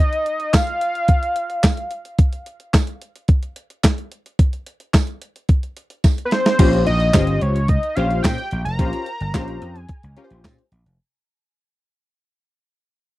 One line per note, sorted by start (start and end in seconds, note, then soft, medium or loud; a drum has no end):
0.00 0.56 D#5 loud
0.13 closed hi-hat medium
0.26 closed hi-hat medium
0.40 closed hi-hat soft
0.53 1.92 F5 loud
0.53 kick loud
0.53 snare loud
0.53 clap medium
0.53 closed hi-hat medium
0.53 tambourine medium
0.67 closed hi-hat medium
0.81 closed hi-hat medium
0.95 closed hi-hat soft
1.08 kick medium
1.08 closed hi-hat medium
1.23 closed hi-hat medium
1.36 closed hi-hat medium
1.50 closed hi-hat soft
1.63 kick loud
1.63 snare medium
1.63 clap medium
1.63 closed hi-hat medium
1.63 tambourine medium
1.77 closed hi-hat soft
1.91 closed hi-hat medium
2.05 closed hi-hat medium
2.19 kick loud
2.19 closed hi-hat loud
2.33 closed hi-hat medium
2.46 closed hi-hat medium
2.60 closed hi-hat soft
2.74 kick loud
2.74 snare medium
2.74 clap medium
2.74 closed hi-hat medium
2.74 tambourine medium
2.87 closed hi-hat soft
3.02 closed hi-hat medium
3.16 closed hi-hat soft
3.28 kick loud
3.28 closed hi-hat medium
3.43 closed hi-hat medium
3.56 closed hi-hat medium
3.70 closed hi-hat soft
3.83 kick loud
3.83 snare loud
3.83 clap medium
3.83 closed hi-hat medium
3.83 tambourine medium
3.98 closed hi-hat soft
4.12 closed hi-hat medium
4.26 closed hi-hat soft
4.39 kick loud
4.39 closed hi-hat medium
4.53 closed hi-hat soft
4.66 closed hi-hat medium
4.80 closed hi-hat soft
4.94 kick loud
4.94 snare loud
4.94 clap medium
4.94 closed hi-hat medium
4.94 tambourine medium
5.07 closed hi-hat soft
5.22 closed hi-hat medium
5.36 closed hi-hat soft
5.49 kick medium
5.49 closed hi-hat medium
5.63 closed hi-hat soft
5.77 closed hi-hat medium
5.90 closed hi-hat soft
6.04 kick loud
6.04 snare soft
6.04 closed hi-hat medium
6.04 tambourine medium
6.18 closed hi-hat soft
6.25 6.34 B4 medium
6.31 6.86 C5 medium
6.31 snare medium
6.31 closed hi-hat medium
6.46 snare medium
6.46 closed hi-hat soft
6.59 6.82 A#1 loud
6.59 6.89 C#4 medium
6.59 6.89 F4 medium
6.59 6.89 G4 medium
6.59 6.89 C5 medium
6.59 kick loud
6.59 closed hi-hat loud
6.59 crash loud
6.73 closed hi-hat medium
6.87 7.10 A#1 loud
6.87 7.43 D#5 loud
6.87 closed hi-hat medium
7.00 closed hi-hat soft
7.13 7.37 G1 medium
7.13 7.59 C#4 medium
7.13 7.59 F4 medium
7.13 7.59 G4 medium
7.13 7.59 C5 medium
7.13 kick loud
7.13 snare loud
7.13 clap medium
7.13 closed hi-hat medium
7.13 tambourine loud
7.27 closed hi-hat medium
7.41 7.77 C#2 loud
7.41 7.70 C#5 medium
7.41 closed hi-hat medium
7.56 closed hi-hat medium
7.68 7.97 D#5 loud
7.68 kick loud
7.68 closed hi-hat medium
7.83 closed hi-hat soft
7.95 8.20 A#1 loud
7.95 8.42 C#4 medium
7.95 8.42 F4 medium
7.95 8.42 G4 medium
7.95 8.42 C5 medium
7.95 8.22 F5 loud
7.95 closed hi-hat medium
8.11 closed hi-hat soft
8.23 8.36 A#2 loud
8.23 8.62 G5 loud
8.23 kick loud
8.23 snare loud
8.23 clap medium
8.23 closed hi-hat medium
8.23 tambourine medium
8.38 closed hi-hat soft
8.51 8.64 A#1 medium
8.51 closed hi-hat medium
8.65 8.77 F1 medium
8.65 9.80 A#5 loud
8.65 closed hi-hat medium
8.79 8.91 A#1 loud
8.79 9.09 C#4 medium
8.79 9.09 F4 medium
8.79 9.09 G4 medium
8.79 9.10 C5 medium
8.79 kick loud
8.79 closed hi-hat loud
8.93 closed hi-hat medium
9.06 closed hi-hat medium
9.21 9.32 G1 medium
9.21 closed hi-hat soft
9.34 9.58 A#1 loud
9.34 9.79 C#4 medium
9.34 9.79 F4 medium
9.34 9.79 G4 medium
9.34 9.79 C5 loud
9.34 kick loud
9.34 snare loud
9.34 clap medium
9.34 closed hi-hat medium
9.34 tambourine medium
9.48 closed hi-hat medium
9.62 9.85 F2 medium
9.62 closed hi-hat medium
9.76 closed hi-hat soft
9.80 10.40 G#5 loud
9.89 kick loud
9.89 closed hi-hat medium
10.03 10.15 C#2 medium
10.03 closed hi-hat medium
10.17 10.62 C#4 medium
10.17 10.62 F4 medium
10.17 10.62 G4 medium
10.17 10.24 A#4 medium
10.17 closed hi-hat medium
10.24 10.65 C5 medium
10.30 10.42 A#1 medium
10.30 closed hi-hat soft
10.44 10.56 A#2 medium
10.44 kick loud
10.44 snare loud
10.44 clap medium
10.44 closed hi-hat medium
10.44 tambourine medium
10.58 closed hi-hat soft
10.72 10.84 A#1 medium
10.72 closed hi-hat medium
10.86 10.97 F1 medium
10.86 closed hi-hat medium